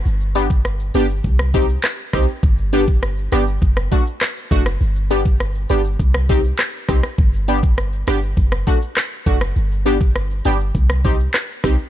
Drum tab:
HH |--x---x---x---x-|--x---x---x---x-|--x---x---x---x-|--x---x---x---x-|
SH |xxxxxxxxxxxxxxxx|xxxxxxxxxxxxxxxx|xxxxxxxxxxxxxxxx|xxxxxxxxxxxxxxxx|
CP |------------x---|------------x---|------------x---|------------x---|
SD |----r----r--r-r-|----r-r--r--r--r|----r----r--r-rr|----r-r--r--r--r|
BD |---o----o-o---o-|o--o----o-o---o-|---o----o-o---o-|o--o----o-o---o-|

HH |--x---x---x---x-|
SH |xxxxxxxxxxxxxxxx|
CP |------------x---|
SD |----r----r--r-r-|
BD |---o----o-o---o-|